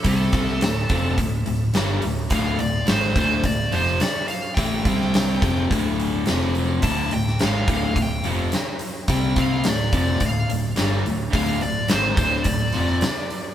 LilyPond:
<<
  \new Staff \with { instrumentName = "Lead electric guitar" } { \time 4/4 \key d \minor \tempo 4 = 106 a'2 r2 | f''8 d''8 c''8 c''8 d''8 c''8 d''8 f''8 | g''2 r2 | a''8 g''8 f''8 f''8 g''8 r4. |
g''8 f''8 d''8 d''8 f''8 r4. | f''8 d''8 c''8 c''8 d''2 | }
  \new Staff \with { instrumentName = "Overdriven electric guitar" } { \clef bass \time 4/4 \key d \minor <c g c'>8 <c g c'>8 <d, a,>8 <f, c f>8 <d, a,>8 <d, a,>8 <g, d g>8 <d, a,>8 | <d, a, d>8 <d, a,>8 <gis, ees gis>8 <d, a, d>8 <d, a,>8 <f, c f>8 r4 | <a, e a>8 <c g c'>4 <f, c f>8 <d, a, d>4 <f, c f>4 | <d, a, d>8 <d, a,>8 <gis, ees gis>8 <d, a, d>8 <d, a,>8 <f, c f>8 r4 |
<c g c'>8 <c g c'>8 <d, a,>8 <f, c f>8 <d, a,>8 <d, a,>8 <g, d g>8 <d, a,>8 | <d, a, d>8 <d, a,>8 <gis, ees gis>8 <d, a, d>8 <d, a,>8 <f, c f>8 r4 | }
  \new Staff \with { instrumentName = "Overdriven electric guitar" } { \clef bass \time 4/4 \key d \minor <c g c'>8 <c g c'>8 <d, a,>8 <f, c f>8 <d, a,>8 <d, a,>8 <g, d g>8 <d, a,>8 | <d, a, d>8 <d, a,>8 <gis, ees gis>8 <d, a, d>8 <d, a,>8 <f, c f>8 r4 | <a, e a>8 <c g c'>4 <f, c f>8 <d, a, d>4 <f, c f>4 | <d, a, d>8 <d, a,>8 <gis, ees gis>8 <d, a, d>8 <d, a,>8 <f, c f>8 r4 |
<c g c'>8 <c g c'>8 <d, a,>8 <f, c f>8 <d, a,>8 <d, a,>8 <g, d g>8 <d, a,>8 | <d, a, d>8 <d, a,>8 <gis, ees gis>8 <d, a, d>8 <d, a,>8 <f, c f>8 r4 | }
  \new Staff \with { instrumentName = "Fingered electric bass" } { \clef bass \time 4/4 \key d \minor c,8 c,8 d,,8 f,,8 d,,8 d,,8 g,,8 d,,8 | d,,8 d,,8 gis,,8 d,,8 d,,8 f,,8 r4 | a,,8 c,4 f,,8 d,,4 f,,4 | d,,8 d,,8 gis,,8 d,,8 d,,8 f,,8 r4 |
c,8 c,8 d,,8 f,,8 d,,8 d,,8 g,,8 d,,8 | d,,8 d,,8 gis,,8 d,,8 d,,8 f,,8 r4 | }
  \new DrumStaff \with { instrumentName = "Drums" } \drummode { \time 4/4 <hho bd>8 <hho bd>16 sn16 <hho sn>8 <hho bd>8 <hho bd>8 hho8 <hho sn>8 hho8 | <hho bd>8 hho8 <hho sn>8 <hho bd>8 <hho bd>8 hho8 <hho sn>8 hho8 | <hho bd>8 <hho bd>16 sn16 <hho sn>8 <hho bd>8 <hho bd>8 hho8 <hho sn>8 hho8 | <hho bd>8 hho16 sn16 <hho sn>8 <hho bd>8 <hho bd>8 hho8 <hho sn>8 hho8 |
<hho bd>8 <hho bd>8 <hho sn>8 <hho bd>8 <hho bd>8 hho8 <hho sn>8 hho8 | <hho bd>8 hho8 <hho sn>8 <hho bd>8 <hho bd>8 hho8 <hho sn>8 hho8 | }
>>